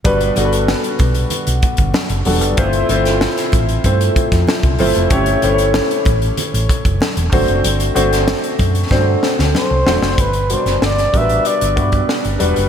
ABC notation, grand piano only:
X:1
M:4/4
L:1/8
Q:1/4=95
K:G
V:1 name="Grand piano"
[G,B,DFB] [G,B,DFAB]4 z2 [G,B,DFA] | [A,CE=Fc] [A,CEFc]3 [A,CEFc]3 [A,CEFc] | [A,^CEG^c] [A,CEG=c^c]4 z2 [A,=CDF=c]- | [A,CDFc] [A,CDFc]3 [A,CDFc]3 [A,CDFc] |
z [B,,G,DF_Bd]2 [G,=B,DF_B=B]2 [G,B,DFB]2 [G,B,DFB] |]